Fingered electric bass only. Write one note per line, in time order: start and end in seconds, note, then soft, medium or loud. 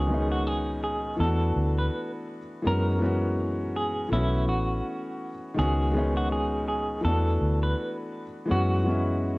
0.00 1.15 C#2 medium
1.20 1.51 E2 medium
1.56 1.88 D2 medium
2.66 4.14 F#2 medium
4.12 4.49 B1 loud
4.49 4.81 A1 medium
5.59 7.01 C#2 loud
7.05 7.37 E2 medium
7.42 7.73 D2 medium
8.51 9.38 F#2 medium